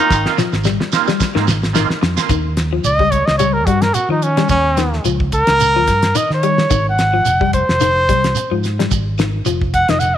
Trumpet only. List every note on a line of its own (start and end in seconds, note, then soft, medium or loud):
2.85 3.12 D#5 medium
3.11 3.27 C#5 medium
3.26 3.37 D#5 medium
3.38 3.54 C#5 medium
3.53 3.67 A#4 medium
3.66 3.84 F#4 medium
3.82 3.95 A#4 medium
3.94 4.08 F#4 medium
4.11 4.25 D#4 medium
4.23 4.49 C#4 medium
4.50 5.03 C#4 loud
5.34 6.18 A#4 loud
6.17 6.30 D#5 medium
6.34 6.86 C#5 medium
6.89 7.53 F#5 medium
7.54 8.60 C5 loud
9.74 9.91 F#5 medium
9.90 10.01 D#5 medium
9.99 10.16 F#5 medium